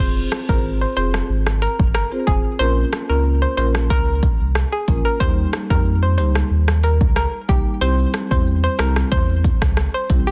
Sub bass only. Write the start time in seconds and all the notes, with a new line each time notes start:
0.00 F1
0.49 G#1
0.97 F1
1.29 G#1
1.79 G1
2.27 F1
2.60 A#1
3.10 C#2
3.58 A#1
3.90 C#2
4.40 C2
4.88 A#1
5.21 D#2
5.70 F2
6.19 C#2
6.51 D#2
7.01 C#2
7.49 C2
7.81 C2
8.31 E2
8.79 C2
9.12 E2
9.62 C#2
10.10 C2